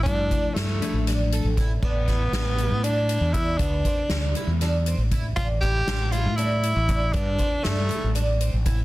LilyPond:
<<
  \new Staff \with { instrumentName = "Tenor saxophone" } { \time 7/8 \key a \minor \tempo 4 = 119 d'4 a4 r4. | b2 d'4 e'8 | d'4. r2 | f'8 g'4 f'8 e'4. |
d'4 a4 r4. | }
  \new Staff \with { instrumentName = "Twelve-string acoustic guitar" } { \time 7/8 \key a \minor d'8 d'8 e'8 e'8 d'8 a'8 e'8 | d'8 e'8 g'8 e'8 d'8 e'8 d'8 | b8 c'8 d'8 e'8 d'8 c'8 e'8 | d'8 e'8 f'8 e'8 d'8 e'8 d'8 |
b8 c'8 d'8 e'8 d'8 c'8 e'8 | }
  \new Staff \with { instrumentName = "Tine electric piano" } { \time 7/8 \key a \minor <f a e'>4. <f a d'>4. r8 | r2. r8 | r2. r8 | r2. r8 |
r2. r8 | }
  \new Staff \with { instrumentName = "Fretless electric bass" } { \clef bass \time 7/8 \key a \minor g,8 r8 g,8 r16 a,,4 a,,8. | a,,4 a,,8. a,4 e,8. | d,8 r8 d,8 r16 e,4 a,,8. | a,,4 a,,8. a,4 a,,8. |
g,8 r8 g,8 r16 a,,4 a,,8. | }
  \new DrumStaff \with { instrumentName = "Drums" } \drummode { \time 7/8 <hh bd>8 <hh bd>8 <hh sn>8 hh8 <hh sn>8 hh8 <hh bd>8 | <cymc bd>8 <hh bd sn>8 <hh sn>8 hh8 hh8 hh8 <hh bd>8 | <hh bd>8 <hh bd>8 <hh sn>8 hh8 <hh sn>8 hh8 <hh bd>8 | <hh bd>8 <hh bd sn>8 <hh sn>8 hh8 hh8 hh8 <hh bd>8 |
<hh bd>8 <hh bd>8 <hh sn>8 hh8 hh8 hh8 <hh bd>8 | }
>>